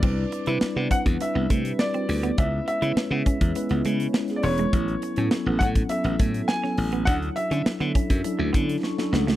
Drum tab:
CC |x---------------|----------------|----------------|----------------|
HH |--xx--xxx-xx-xox|x-xx--xxxxxx-xox|xxxx--xxxxxx--ox|xxxx-xxxx-xx----|
SD |----o-------o---|----o-------oo--|----o-------oo--|----o-------oooo|
BD |o-----oo--o-----|o-----oo--------|o-----oo--o-----|o-----oo--o-----|